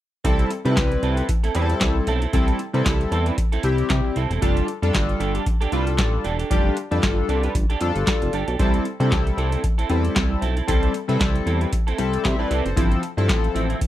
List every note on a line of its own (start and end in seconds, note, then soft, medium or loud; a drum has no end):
0.24 0.44 C2 loud
0.24 0.50 G3 medium
0.24 0.49 C4 medium
0.24 0.50 C4 medium
0.24 0.50 E4 medium
0.24 0.49 E4 medium
0.24 0.50 A4 medium
0.24 0.49 A4 medium
0.24 kick loud
0.24 closed hi-hat medium
0.39 closed hi-hat soft
0.51 muted clean electric guitar stroke soft
0.51 closed hi-hat medium
0.65 0.79 C3 loud
0.65 1.24 G3 medium
0.65 1.24 C4 medium
0.65 0.76 C4 soft
0.65 0.71 D#4 medium
0.65 0.76 E4 medium
0.65 0.77 A4 medium
0.65 1.24 B4 medium
0.65 closed hi-hat soft
0.71 1.27 E4 medium
0.77 0.96 C2 medium
0.77 muted clean electric guitar stroke soft
0.77 kick loud
0.77 snare loud
0.77 clap loud
0.77 closed hi-hat medium
0.91 muted clean electric guitar stroke soft
0.91 closed hi-hat soft
1.03 1.22 C2 medium
1.03 1.17 C4 medium
1.03 1.17 E4 medium
1.03 1.16 A4 medium
1.03 closed hi-hat medium
1.17 1.28 C4 medium
1.17 1.28 E4 medium
1.17 1.28 A4 medium
1.17 closed hi-hat medium
1.29 muted clean electric guitar stroke soft
1.29 kick loud
1.29 closed hi-hat medium
1.44 1.54 C4 medium
1.44 1.54 E4 medium
1.44 1.56 A4 medium
1.44 closed hi-hat soft
1.54 1.75 E2 medium
1.54 2.06 G3 medium
1.54 2.06 C4 medium
1.54 1.70 C4 medium
1.54 2.06 E4 medium
1.54 1.69 E4 medium
1.54 1.62 G#4 medium
1.54 1.69 B4 medium
1.54 closed hi-hat medium
1.62 2.10 A4 medium
1.70 muted clean electric guitar stroke soft
1.70 closed hi-hat soft
1.81 2.01 C2 medium
1.81 kick loud
1.81 snare loud
1.81 clap loud
1.81 closed hi-hat medium
1.96 muted clean electric guitar stroke soft
2.07 2.27 B1 medium
2.07 2.22 C4 medium
2.07 2.21 E4 medium
2.07 2.21 A4 medium
2.07 closed hi-hat medium
2.22 2.32 C4 medium
2.22 2.33 E4 medium
2.22 2.33 A4 medium
2.22 closed hi-hat soft
2.33 2.53 C2 loud
2.33 2.59 G3 medium
2.33 2.59 C4 medium
2.33 2.58 C4 medium
2.33 2.59 E4 medium
2.33 2.58 E4 medium
2.33 2.59 A4 medium
2.33 2.58 A4 medium
2.33 kick loud
2.33 closed hi-hat medium
2.48 closed hi-hat soft
2.59 muted clean electric guitar stroke soft
2.59 closed hi-hat medium
2.73 2.83 C3 medium
2.73 3.33 G3 medium
2.73 3.33 C4 medium
2.73 2.85 C4 soft
2.73 3.33 E4 medium
2.73 2.85 E4 medium
2.73 3.33 A4 medium
2.73 2.86 B4 medium
2.73 closed hi-hat soft
2.86 3.05 C2 medium
2.86 muted clean electric guitar stroke soft
2.86 kick loud
2.86 snare loud
2.86 clap loud
2.86 closed hi-hat medium
3.00 muted clean electric guitar stroke soft
3.00 closed hi-hat soft
3.12 3.31 E2 medium
3.12 3.26 C4 medium
3.12 3.26 E4 medium
3.12 3.26 A4 medium
3.12 closed hi-hat medium
3.26 3.37 C4 medium
3.26 3.37 E4 medium
3.26 3.38 B4 medium
3.26 closed hi-hat medium
3.38 muted clean electric guitar stroke soft
3.38 kick loud
3.38 closed hi-hat medium
3.52 3.63 C4 medium
3.52 3.63 E4 medium
3.52 3.64 A4 medium
3.52 closed hi-hat soft
3.63 3.83 C2 medium
3.63 4.15 G3 medium
3.63 4.15 C4 medium
3.63 4.15 E4 medium
3.63 4.15 G4 loud
3.63 muted clean electric guitar stroke soft
3.63 closed hi-hat medium
3.78 muted clean electric guitar stroke soft
3.78 closed hi-hat soft
3.90 4.01 C3 loud
3.90 muted clean electric guitar stroke soft
3.90 kick loud
3.90 snare loud
3.90 clap loud
3.90 closed hi-hat medium
4.05 muted clean electric guitar stroke soft
4.16 4.27 C2 medium
4.16 4.30 C4 medium
4.16 4.30 E4 medium
4.16 4.29 A4 medium
4.16 closed hi-hat medium
4.30 4.39 E1 medium
4.30 4.42 C4 soft
4.30 4.42 E4 medium
4.30 4.42 A4 medium
4.30 closed hi-hat soft
4.41 4.61 F1 loud
4.41 4.67 G3 medium
4.41 4.67 D4 medium
4.41 4.66 D4 medium
4.41 4.68 F4 medium
4.41 4.67 G4 medium
4.41 4.68 A4 medium
4.41 4.67 A4 medium
4.41 kick loud
4.41 closed hi-hat medium
4.57 closed hi-hat soft
4.68 muted clean electric guitar stroke soft
4.68 closed hi-hat medium
4.82 4.91 F2 medium
4.82 5.41 G3 medium
4.82 5.41 D4 medium
4.82 4.93 D4 soft
4.82 5.42 F4 medium
4.82 4.93 G4 medium
4.82 4.93 A4 medium
4.82 5.42 A4 medium
4.82 closed hi-hat soft
4.94 5.14 G1 medium
4.94 kick loud
4.94 snare loud
4.94 clap loud
4.94 closed hi-hat medium
5.08 muted clean electric guitar stroke soft
5.08 closed hi-hat soft
5.20 5.40 G1 medium
5.20 5.35 D4 medium
5.20 5.34 G4 medium
5.20 5.34 A4 medium
5.20 closed hi-hat medium
5.35 5.45 D4 medium
5.35 5.45 G4 medium
5.35 5.46 A4 medium
5.35 closed hi-hat medium
5.46 muted clean electric guitar stroke soft
5.46 kick loud
5.46 closed hi-hat medium
5.61 5.71 D4 medium
5.61 5.71 G4 medium
5.61 5.73 A4 medium
5.61 closed hi-hat soft
5.72 6.00 C2 medium
5.72 6.24 G3 medium
5.72 5.87 D4 medium
5.72 6.24 D4 medium
5.72 6.24 F4 medium
5.72 5.86 G4 medium
5.72 6.24 A4 medium
5.72 5.86 B4 medium
5.72 closed hi-hat medium
5.87 muted clean electric guitar stroke soft
5.87 closed hi-hat soft
5.98 6.18 A1 loud
5.98 muted clean electric guitar stroke soft
5.98 kick loud
5.98 snare loud
5.98 clap loud
5.98 closed hi-hat medium
6.13 muted clean electric guitar stroke soft
6.24 6.44 E1 medium
6.24 6.39 D4 medium
6.24 6.38 G4 medium
6.24 6.38 A4 medium
6.24 closed hi-hat medium
6.39 6.49 D4 soft
6.39 6.50 G4 medium
6.39 6.50 A4 medium
6.39 closed hi-hat soft
6.50 6.70 F1 loud
6.50 6.76 G3 medium
6.50 6.75 D4 medium
6.50 6.76 D4 medium
6.50 6.77 F4 medium
6.50 6.75 G4 medium
6.50 6.77 G4 loud
6.50 6.75 A4 medium
6.50 kick loud
6.50 closed hi-hat medium
6.77 muted clean electric guitar stroke soft
6.77 closed hi-hat medium
6.91 7.00 F2 loud
6.91 7.50 G3 medium
6.91 7.50 D4 medium
6.91 7.01 D4 soft
6.91 7.50 F4 medium
6.91 7.02 G4 soft
6.91 7.51 A4 medium
6.91 7.03 B4 medium
6.91 closed hi-hat soft
7.03 7.23 G1 medium
7.03 kick loud
7.03 snare loud
7.03 clap loud
7.03 closed hi-hat medium
7.17 muted clean electric guitar stroke soft
7.29 7.48 C2 medium
7.29 7.44 D4 medium
7.29 7.43 G4 medium
7.29 7.43 A4 medium
7.29 closed hi-hat medium
7.43 7.54 D4 medium
7.43 7.54 G4 medium
7.43 7.55 B4 medium
7.43 closed hi-hat medium
7.55 7.66 G1 medium
7.55 muted clean electric guitar stroke soft
7.55 kick loud
7.55 closed hi-hat medium
7.70 7.80 D4 medium
7.70 7.81 G4 medium
7.70 7.81 A4 medium
7.70 closed hi-hat soft
7.81 7.92 F2 medium
7.81 8.32 G3 medium
7.81 8.32 D4 medium
7.81 8.33 F4 medium
7.81 8.33 A4 loud
7.81 muted clean electric guitar stroke soft
7.81 closed hi-hat medium
7.96 8.04 G1 medium
7.96 muted clean electric guitar stroke soft
7.96 closed hi-hat soft
8.07 muted clean electric guitar stroke soft
8.07 kick loud
8.07 snare loud
8.07 clap medium
8.07 closed hi-hat medium
8.22 8.30 F1 medium
8.22 muted clean electric guitar stroke soft
8.22 closed hi-hat soft
8.33 8.44 G1 medium
8.33 8.48 D4 medium
8.33 8.47 G4 medium
8.33 8.46 A4 medium
8.33 closed hi-hat medium
8.48 8.56 B1 medium
8.48 8.59 D4 soft
8.48 8.60 G4 medium
8.48 8.59 A4 medium
8.48 closed hi-hat soft
8.59 8.79 C2 loud
8.59 8.85 G3 medium
8.59 8.85 C4 medium
8.59 8.84 C4 medium
8.59 8.85 E4 medium
8.59 8.84 E4 medium
8.59 8.85 A4 medium
8.59 8.84 A4 medium
8.59 kick loud
8.59 closed hi-hat medium
8.74 closed hi-hat soft
8.85 muted clean electric guitar stroke soft
8.85 closed hi-hat medium
9.00 9.13 C3 loud
9.00 9.59 G3 medium
9.00 9.59 C4 medium
9.00 9.10 C4 soft
9.00 9.06 D4 medium
9.00 9.11 E4 medium
9.00 9.11 A4 medium
9.00 9.59 A4 medium
9.00 closed hi-hat soft
9.07 9.62 E4 medium
9.12 9.31 C2 medium
9.12 muted clean electric guitar stroke soft
9.12 kick loud
9.12 snare loud
9.12 clap loud
9.12 closed hi-hat medium
9.26 muted clean electric guitar stroke soft
9.26 closed hi-hat soft
9.37 9.57 C2 medium
9.37 9.52 C4 medium
9.37 9.51 E4 medium
9.37 9.51 A4 medium
9.37 closed hi-hat medium
9.52 9.62 C4 soft
9.52 9.63 E4 medium
9.52 9.63 A4 medium
9.52 closed hi-hat medium
9.63 muted clean electric guitar stroke soft
9.63 kick medium
9.63 closed hi-hat medium
9.78 9.88 C4 medium
9.78 9.89 E4 medium
9.78 9.90 A4 medium
9.78 closed hi-hat soft
9.89 10.09 E2 medium
9.89 10.41 G3 medium
9.89 10.05 C4 medium
9.89 10.41 C4 medium
9.89 10.41 E4 medium
9.89 10.04 E4 medium
9.89 10.41 A4 medium
9.89 10.04 B4 medium
9.89 closed hi-hat medium
10.04 muted clean electric guitar stroke soft
10.04 closed hi-hat soft
10.16 10.36 C2 loud
10.16 kick loud
10.16 snare loud
10.16 clap medium
10.16 closed hi-hat medium
10.30 muted clean electric guitar stroke medium
10.41 10.62 B1 medium
10.41 10.56 C4 medium
10.41 10.56 E4 medium
10.41 10.55 A4 medium
10.41 closed hi-hat medium
10.56 10.66 C4 soft
10.56 10.67 E4 medium
10.56 10.67 A4 medium
10.56 closed hi-hat medium
10.67 10.88 C2 loud
10.67 10.93 G3 medium
10.67 10.93 C4 medium
10.67 10.92 C4 medium
10.67 10.94 E4 medium
10.67 10.92 E4 medium
10.67 10.94 A4 medium
10.67 10.93 A4 medium
10.67 kick loud
10.67 closed hi-hat medium
10.83 closed hi-hat soft
10.94 muted clean electric guitar stroke soft
10.94 closed hi-hat medium
11.08 11.17 C3 medium
11.08 11.67 G3 medium
11.08 11.67 C4 medium
11.08 11.19 C4 medium
11.08 11.67 E4 medium
11.08 11.19 E4 medium
11.08 11.68 A4 loud
11.08 11.21 B4 medium
11.08 closed hi-hat soft
11.20 11.40 C2 medium
11.20 muted clean electric guitar stroke soft
11.20 kick loud
11.20 snare loud
11.20 clap loud
11.20 closed hi-hat medium
11.35 muted clean electric guitar stroke soft
11.35 closed hi-hat soft
11.46 11.66 E2 loud
11.46 11.61 C4 medium
11.46 11.60 E4 medium
11.46 11.60 A4 medium
11.46 closed hi-hat medium
11.61 11.71 C4 medium
11.61 11.72 E4 medium
11.61 11.73 B4 medium
11.61 closed hi-hat medium
11.72 muted clean electric guitar stroke soft
11.72 kick medium
11.72 closed hi-hat medium
11.87 11.97 C4 medium
11.87 11.98 E4 medium
11.87 11.98 A4 medium
11.87 closed hi-hat soft
11.98 12.18 C2 medium
11.98 12.50 G3 medium
11.98 12.50 C4 medium
11.98 12.50 E4 medium
11.98 12.25 A4 medium
11.98 muted clean electric guitar stroke soft
11.98 closed hi-hat medium
12.13 muted clean electric guitar stroke soft
12.13 closed hi-hat soft
12.24 12.36 C3 loud
12.24 12.39 C5 medium
12.24 12.39 E5 medium
12.24 muted clean electric guitar stroke soft
12.24 kick loud
12.24 snare loud
12.24 clap loud
12.24 closed hi-hat medium
12.39 12.49 C4 medium
12.39 12.50 E4 medium
12.39 12.51 A4 medium
12.39 12.64 B4 medium
12.39 12.64 D5 medium
12.51 12.62 C2 medium
12.51 12.69 C4 medium
12.51 12.65 E4 medium
12.51 12.64 A4 medium
12.51 closed hi-hat medium
12.65 12.74 F#1 medium
12.65 12.76 A4 medium
12.65 12.90 C5 medium
12.65 muted clean electric guitar stroke soft
12.65 closed hi-hat soft
12.76 12.96 G1 loud
12.76 13.02 F3 medium
12.76 13.01 F3 medium
12.76 13.02 C4 medium
12.76 13.01 C4 medium
12.76 13.02 E4 medium
12.76 13.03 A4 medium
12.76 kick loud
12.76 closed hi-hat medium
12.92 closed hi-hat soft
13.03 muted clean electric guitar stroke soft
13.03 closed hi-hat medium
13.17 13.31 G2 loud
13.17 13.76 F3 medium
13.17 13.28 F3 soft
13.17 13.76 C4 medium
13.17 13.28 C4 soft
13.17 13.28 E4 medium
13.17 13.76 E4 medium
13.17 13.76 A4 loud
13.17 closed hi-hat soft
13.29 13.49 A1 loud
13.29 muted clean electric guitar stroke soft
13.29 kick loud
13.29 snare loud
13.29 clap medium
13.29 closed hi-hat medium
13.43 muted clean electric guitar stroke soft
13.43 closed hi-hat soft
13.54 13.75 A1 medium
13.54 13.69 F3 medium
13.54 13.69 C4 medium
13.54 13.68 E4 loud
13.54 closed hi-hat medium
13.69 13.79 F3 soft
13.69 13.80 C4 medium
13.69 13.80 E4 medium
13.69 closed hi-hat medium
13.81 muted clean electric guitar stroke soft
13.81 kick loud
13.81 closed hi-hat medium